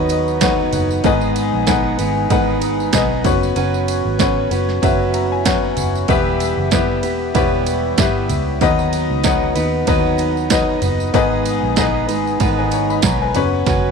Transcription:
Already playing: fingered electric bass D#2, steel-string acoustic guitar D#3 F#3 B3 D#4 B4, upright piano D#3 B3 D#4 F#4 B4 C#5 D#5
0.09 upright piano D#5, ride, tambourine
0.28 tambourine
0.40 steel-string acoustic guitar F#3 B3 D#4 B4, upright piano B3 D#4 F#4 B4 C#5 F#5, kick, snare, ride, tambourine
0.73 fingered electric bass F#1, upright piano F#5, floor tom, ride, tambourine
0.91 tambourine
1.04 fingered electric bass G#1, steel-string acoustic guitar G#2 D#3 G#3 B3 D#4 B4, upright piano G#2 B3 D#4 G#4 B4 D#5, kick, ride, tambourine
1.21 tambourine
1.36 ride, tambourine
1.53 fingered electric bass A#1
1.67 steel-string acoustic guitar G#3 B3 D#4 B4, upright piano B3 D#4 G#4 B4 F#5, kick, snare, ride, tambourine
1.99 fingered electric bass G#1, steel-string acoustic guitar G#3 B3 D#4 B4, ride, tambourine
2.30 fingered electric bass G#1, steel-string acoustic guitar G#2 D#3 G#3 B3 D#4 B4, upright piano B3 D#4 G#4 B4 F#5, kick, ride, tambourine
2.61 ride, tambourine
2.80 tambourine
2.93 fingered electric bass B1, steel-string acoustic guitar G#3 B3 D#4 B4, upright piano B3 D#4 G#4 B4 D#5, kick, snare, ride, tambourine
3.24 fingered electric bass F#1, upright piano B3 C#4 F#4 B4 C#5, steel-string acoustic guitar C#4 F#4 B4, kick, floor tom, ride, tambourine
3.43 tambourine
3.56 fingered electric bass F#1, steel-string acoustic guitar F#3 C#4 F#4 B4, ride, tambourine
3.74 tambourine
3.88 ride, tambourine
4.05 fingered electric bass G#1
4.19 steel-string acoustic guitar F#3 C#4 F#4 B4, upright piano B3 C#4 F#4 B4 C#5, kick, snare, ride, tambourine
4.51 fingered electric bass F#1, steel-string acoustic guitar C#4 F#4 B4, ride, tambourine
4.69 snare
4.82 fingered electric bass F#1, steel-string acoustic guitar F#3 C#4 F#4 B4, upright piano B3 C#4 F#4 B4 E5, kick, ride, tambourine
5.14 upright piano A#5, ride, tambourine
5.32 upright piano G#5
5.45 steel-string acoustic guitar F#3 C#4 F#4 B4, upright piano B3 C#4 F#4 B4 C#5 F#5, kick, snare, ride, tambourine
5.77 fingered electric bass F#1, floor tom, ride, tambourine
5.95 tambourine
6.08 fingered electric bass E1, steel-string acoustic guitar E3 G3 B3 G4 B4, upright piano E3 B3 E4 G4 B4 E5, kick, ride, tambourine
6.40 ride, tambourine
6.58 fingered electric bass F#1
6.71 steel-string acoustic guitar G3 B3 G4 B4, upright piano B3 E4 G4 B4 E5, kick, snare, ride, tambourine
7.03 fingered electric bass E1, steel-string acoustic guitar B3 G4 B4, ride, tambourine
7.34 fingered electric bass E1, steel-string acoustic guitar E3 G3 B3 G4 B4, upright piano B3 E4 G4 B4 C#5, kick, ride, tambourine
7.66 ride, tambourine
7.97 fingered electric bass G1, steel-string acoustic guitar G3 B3 G4 B4, upright piano B3 E4 G4 B4 E5, kick, snare, ride, tambourine
8.29 fingered electric bass C#2, floor tom, ride, tambourine
8.61 fingered electric bass D#2, steel-string acoustic guitar D#3 F#3 B3 D#4 B4, upright piano D#3 B3 D#4 F#4 B4 D#5, kick, ride, tambourine
8.79 tambourine
8.93 ride, tambourine
9.10 fingered electric bass C#2
9.23 steel-string acoustic guitar F#3 B3 D#4 B4, upright piano B3 D#4 F#4 B4 F#5, kick, snare, ride, tambourine
9.55 fingered electric bass D#2, steel-string acoustic guitar B3 D#4 B4, ride, tambourine
9.87 fingered electric bass D#2, steel-string acoustic guitar D#3 F#3 B3 D#4 B4, upright piano B3 D#4 F#4 B4 D#5, kick, ride, tambourine
10.18 ride, tambourine
10.37 tambourine
10.50 steel-string acoustic guitar F#3 B3 D#4 B4, upright piano B3 D#4 F#4 B4 D#5, kick, snare, ride, tambourine
10.82 fingered electric bass F#1, steel-string acoustic guitar B3 D#4 B4, floor tom, ride, tambourine
11.00 tambourine
11.14 fingered electric bass G#1, steel-string acoustic guitar G#2 D#3 G#3 B3 D#4 B4, upright piano G#2 B3 D#4 G#4 B4 D#5, kick, ride, tambourine
11.45 ride, tambourine
11.63 fingered electric bass A#1
11.76 steel-string acoustic guitar G#3 B3 D#4 B4, upright piano B3 D#4 G#4 B4 D#5, kick, snare, ride, tambourine
12.08 fingered electric bass G#1, steel-string acoustic guitar G#3 B3 D#4 B4, ride, tambourine
12.27 tambourine
12.40 fingered electric bass G#1, steel-string acoustic guitar G#2 D#3 G#3 B3 D#4 B4, upright piano A#4 F#5, kick, ride, tambourine
12.58 upright piano B4 G#5
12.71 upright piano C#5 A#5, ride, tambourine
12.90 upright piano D#5 B5, tambourine
13.02 fingered electric bass B1, steel-string acoustic guitar G#3 B3 D#4 B4, upright piano C#5 A#5, kick, snare, ride, tambourine
13.22 upright piano B4 G#5
13.34 fingered electric bass F#1, upright piano B3 C#4 F#4 B4 C#5, steel-string acoustic guitar C#4 F#4 B4, floor tom, ride, tambourine
13.66 fingered electric bass F#1, steel-string acoustic guitar F#3 C#4 F#4 B4, kick, snare, ride, tambourine

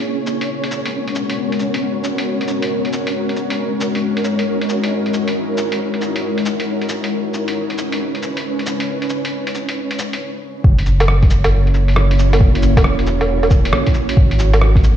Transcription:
Already playing: ambient pad C#4, synth texture C#4 C#5
0.05 ambient pad G#3 B3 F#4 A#4
0.27 cabasa
0.41 closed hi-hat
0.64 closed hi-hat
0.71 cabasa
0.85 closed hi-hat
1.07 closed hi-hat
1.15 cabasa
1.29 closed hi-hat
1.52 closed hi-hat
1.59 cabasa
1.74 closed hi-hat
2.04 cabasa
2.18 closed hi-hat
2.41 closed hi-hat
2.48 cabasa
2.62 closed hi-hat
2.85 closed hi-hat
2.93 cabasa
3.07 closed hi-hat
3.29 closed hi-hat
3.36 cabasa
3.50 closed hi-hat
3.59 ambient pad D#4 E4
3.81 cabasa
3.95 closed hi-hat
4.17 closed hi-hat
4.24 cabasa
4.39 closed hi-hat
4.62 closed hi-hat
4.69 cabasa
4.84 closed hi-hat
5.06 closed hi-hat
5.14 cabasa
5.28 closed hi-hat
5.57 cabasa
5.72 closed hi-hat
5.94 closed hi-hat
6.01 cabasa
6.16 closed hi-hat
6.38 closed hi-hat
6.46 cabasa
6.60 closed hi-hat
6.82 closed hi-hat
6.89 cabasa
7.04 closed hi-hat
7.12 ambient pad C#4 B4
7.34 cabasa
7.48 closed hi-hat
7.70 closed hi-hat
7.78 cabasa
7.92 closed hi-hat
8.15 closed hi-hat
8.22 cabasa
8.37 closed hi-hat
8.59 closed hi-hat
8.66 cabasa
8.80 closed hi-hat
9.02 closed hi-hat
9.10 cabasa
9.25 closed hi-hat
9.47 closed hi-hat
9.55 cabasa
9.69 closed hi-hat
9.91 closed hi-hat
9.99 cabasa
10.13 closed hi-hat
10.64 sub bass F#1, ambient pad A#3 C#4 E4 F#4 C#5, kick
10.79 closed hi-hat
10.86 cabasa
11.00 closed hi-hat, low woodblock
11.08 cross-stick
11.23 kick, closed hi-hat
11.30 cabasa
11.44 closed hi-hat, low woodblock
11.52 sub bass F#1
11.67 closed hi-hat
11.74 cabasa
11.88 closed hi-hat
11.96 cross-stick
12.11 closed hi-hat
12.19 cabasa
12.33 closed hi-hat, low woodblock
12.41 kick
12.55 closed hi-hat
12.63 cabasa
12.77 sub bass E1, kick, closed hi-hat, low woodblock
12.84 cross-stick
12.99 closed hi-hat
13.07 cabasa
13.21 closed hi-hat, low woodblock
13.43 closed hi-hat, low woodblock
13.51 kick, cabasa
13.65 closed hi-hat
13.73 cross-stick
13.87 kick, closed hi-hat
13.94 cabasa
14.09 closed hi-hat
14.17 sub bass G#1, ambient pad G#3 B3 C#4 A#4, kick
14.31 closed hi-hat
14.39 cabasa
14.54 closed hi-hat, low woodblock
14.61 cross-stick
14.76 kick, closed hi-hat
14.84 cabasa

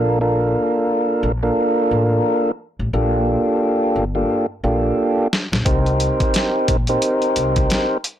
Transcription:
Already playing: upright bass A#1, tonewheel organ A#3 D4 F4 A4 A#4
0.21 tonewheel organ A#3 D4 F4 A4 A#4
1.23 upright bass A#1
1.43 tonewheel organ A#3 D4 F4 A4 A#4
1.91 upright bass A1
2.79 upright bass A1
2.93 upright bass A#1, tonewheel organ A#3 D4 F4 G4 A4
3.96 upright bass G1
4.15 tonewheel organ A#3 D4 F4 G4 A4
4.64 upright bass A#1, tonewheel organ A#3 D4 F4 G4 A4
5.33 snare
5.52 upright bass A#1, snare
5.65 upright bass C2, tonewheel organ C4 D#4 G4 A#4 C5, kick, closed hi-hat
5.86 closed hi-hat
6.00 closed hi-hat
6.20 kick, closed hi-hat
6.34 snare, closed hi-hat
6.68 upright bass A#1, kick, closed hi-hat
6.87 tonewheel organ C4 D#4 G4 A#4 C5, closed hi-hat
7.02 closed hi-hat
7.22 closed hi-hat
7.36 upright bass C2, closed hi-hat
7.56 kick, closed hi-hat
7.70 snare, closed hi-hat
8.04 closed hi-hat

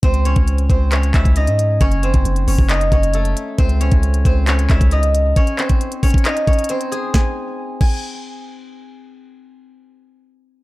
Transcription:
0.03 808-style bass C#2, guzheng C4 C5, kick, closed hi-hat
0.14 closed hi-hat
0.25 guzheng C#4 C#5, closed hi-hat
0.36 808-style bass C#2, kick, closed hi-hat
0.48 closed hi-hat
0.58 closed hi-hat
0.69 808-style bass C#2, guzheng C4 C5, kick, closed hi-hat
0.92 guzheng C#4 C#5, clap, closed hi-hat
1.03 closed hi-hat
1.14 808-style bass C#2, guzheng E4 E5, kick, clap, closed hi-hat
1.25 kick, closed hi-hat
1.36 guzheng D#4 D#5, closed hi-hat
1.47 808-style bass G#2, closed hi-hat
1.59 closed hi-hat
1.81 808-style bass F#1, guzheng C#4 C#5, kick, closed hi-hat
1.92 closed hi-hat
2.03 guzheng C4 C5, closed hi-hat
2.14 808-style bass F#1, kick, closed hi-hat
2.25 808-style bass F#1, closed hi-hat
2.36 closed hi-hat
2.47 808-style bass F#1, guzheng C#4 C#5, open hi-hat
2.59 808-style bass F#1, kick
2.69 guzheng D#4 D#5, clap, closed hi-hat
2.81 closed hi-hat
2.92 808-style bass F#1, guzheng C#4 C#5, kick, closed hi-hat
3.03 closed hi-hat
3.14 guzheng A3 A4, closed hi-hat
3.25 closed hi-hat
3.37 closed hi-hat
3.58 808-style bass C#2, guzheng C4 C5, kick, closed hi-hat
3.69 closed hi-hat
3.81 guzheng C#4 C#5, closed hi-hat
3.92 808-style bass C#2, kick, closed hi-hat
4.03 closed hi-hat
4.14 closed hi-hat
4.25 808-style bass C#2, guzheng C4 C5, kick, closed hi-hat
4.47 guzheng C#4 C#5, clap, closed hi-hat
4.59 closed hi-hat
4.70 808-style bass C#2, guzheng E4 E5, kick, clap, closed hi-hat
4.81 kick, closed hi-hat
4.91 guzheng D#4 D#5, closed hi-hat
5.03 closed hi-hat
5.15 closed hi-hat
5.36 guzheng C#4 C#5, kick, closed hi-hat
5.47 closed hi-hat
5.58 guzheng C4 C5, clap, closed hi-hat
5.69 kick, closed hi-hat
5.81 closed hi-hat
5.92 closed hi-hat
6.03 guzheng C#4 C#5, kick, closed hi-hat, open hi-hat
6.10 kick, closed hi-hat
6.18 closed hi-hat
6.25 guzheng D#4 D#5, clap, closed hi-hat
6.37 closed hi-hat
6.47 guzheng C#4 C#5, kick, closed hi-hat
6.53 closed hi-hat
6.59 closed hi-hat
6.64 closed hi-hat
6.69 guzheng C4 C5, closed hi-hat
6.81 closed hi-hat
6.92 guzheng G#4 G#5, closed hi-hat
7.14 guzheng G#5, kick, snare
7.81 guzheng G#5, kick, crash

